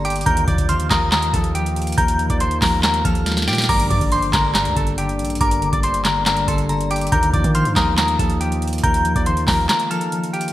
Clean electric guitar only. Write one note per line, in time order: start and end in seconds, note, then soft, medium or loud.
0.05 0.25 G4 medium
0.05 0.24 G5 medium
0.26 0.46 A#4 medium
0.26 0.46 A#5 loud
0.48 0.68 D5 medium
0.48 0.67 D6 medium
0.69 0.89 C5 medium
0.69 0.89 C6 medium
0.91 1.11 A#4 medium
0.91 1.10 A#5 medium
1.12 1.32 A#4 medium
1.12 1.32 A#5 medium
1.33 1.53 A4 medium
1.33 1.53 A5 medium
1.55 1.96 G4 medium
1.55 1.95 G5 medium
1.98 2.28 A#4 medium
1.98 2.28 A#5 loud
2.30 2.40 D5 medium
2.30 2.40 D6 medium
2.41 2.61 C5 medium
2.41 2.60 C6 medium
2.62 2.82 A#4 medium
2.62 2.81 A#5 medium
2.84 3.03 A#4 medium
2.84 3.03 A#5 medium
3.05 3.46 A4 medium
3.05 3.45 A5 medium
3.48 3.68 G4 medium
3.48 3.67 G5 medium
3.69 3.89 A#4 medium
3.69 3.89 A#5 loud
3.90 4.10 D5 medium
3.90 4.10 D6 medium
4.12 4.32 C5 medium
4.12 4.32 C6 medium
4.33 4.53 A#4 medium
4.33 4.53 A#5 loud
4.55 4.75 A#4 medium
4.55 4.74 A#5 medium
4.76 4.96 A4 medium
4.76 4.96 A5 medium
4.98 5.39 G4 medium
4.98 5.38 G5 medium
5.41 5.71 A#4 medium
5.41 5.71 A#5 loud
5.73 5.83 D5 medium
5.73 5.83 D6 medium
5.84 6.03 C5 medium
5.84 6.03 C6 medium
6.05 6.25 A#4 medium
6.05 6.25 A#5 medium
6.27 6.47 A#4 medium
6.27 6.46 A#5 medium
6.48 6.89 A4 medium
6.48 6.88 A5 medium
6.91 7.11 G4 medium
6.91 7.10 G5 medium
7.12 7.32 A#4 medium
7.12 7.32 A#5 loud
7.33 7.53 D5 medium
7.33 7.53 D6 medium
7.55 7.75 C5 medium
7.55 7.74 C6 medium
7.76 7.96 A#4 medium
7.76 7.96 A#5 medium
7.98 8.18 A#4 medium
7.98 8.17 A#5 medium
8.19 8.39 A4 medium
8.19 8.39 A5 medium
8.41 8.81 G4 medium
8.41 8.81 G5 medium
8.83 9.14 A#4 medium
8.83 9.14 A#5 loud
9.16 9.26 D5 medium
9.16 9.25 D6 medium
9.26 9.46 C5 medium
9.26 9.46 C6 medium
9.48 9.68 A#4 medium
9.48 9.67 A#5 medium
9.69 9.89 A#4 medium
9.69 9.89 A#5 medium
9.91 10.31 A4 medium
9.91 10.31 A5 medium
10.33 10.53 G4 medium
10.33 10.53 G5 medium